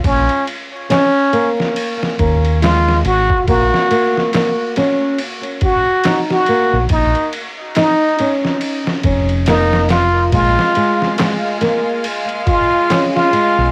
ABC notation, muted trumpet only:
X:1
M:4/4
L:1/16
Q:"Swing 16ths" 1/4=70
K:Bbm
V:1 name="Muted trumpet"
D2 z2 D3 z4 z F2 G2 | G4 z6 G3 G3 | E2 z2 E3 z4 z E2 F2 | F4 z6 F3 F3 |]